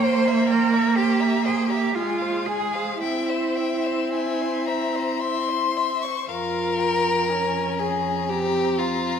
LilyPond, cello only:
\new Staff \with { instrumentName = "Cello" } { \time 3/4 \key f \minor \tempo 4 = 60 c''8 bes'8 g'8 aes'16 g'16 f'8 aes'8 | e'2~ e'8 r8 | f,2. | }